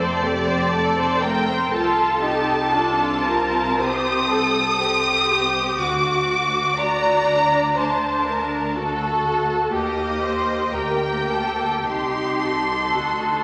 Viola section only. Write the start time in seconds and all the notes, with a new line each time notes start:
0.00 C4 C5
0.23 A3 A4
0.48 C4 C5
0.72 A3 A4
0.98 C4 C5
1.22 A3 A4
1.49 C4 C5
1.73 F4 A4
2.22 D#4
2.71 D4 F4
3.23 C4
3.80 G4
4.30 A4
4.80 C4 A4
5.30 G4
5.80 F#4
6.79 F#4
7.29 D4
7.79 D4
8.76 F#4 A4
9.73 A#3 G4
10.74 A#3 G4
11.87 D#4 G4
12.95 D#4 F#4